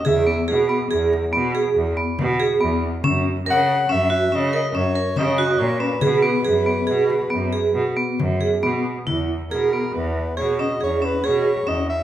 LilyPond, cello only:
\new Staff \with { instrumentName = "Cello" } { \clef bass \time 7/4 \key e \lydian \tempo 4 = 140 e,4 b,4 e,4 b,4 e,8 r8 b,4 e,4 | fis,4 cis4 fis,4 cis4 fis,8 r8 cis4 ais,4 | b,4 fis,4 b,4 fis,4 b,8 r8 fis,4 b,4 | e,4 b,4 e,4 b,4 e,4 b,4 e,4 | }